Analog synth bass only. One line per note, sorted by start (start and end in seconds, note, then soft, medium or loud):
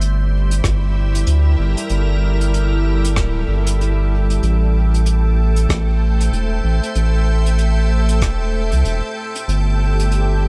0.00 0.61 G1 loud
0.64 1.25 G1 medium
1.27 1.56 D2 medium
1.59 1.75 G1 medium
1.90 3.18 G1 loud
3.17 3.45 D1 loud
3.48 4.40 G1 medium
4.43 5.67 A1 loud
5.69 6.30 A1 medium
6.33 6.61 E1 medium
6.64 6.80 A1 medium
6.96 8.23 A1 medium
8.22 8.74 E1 loud
8.72 8.83 C2 loud
8.85 9.02 E1 medium
9.48 10.48 G1 loud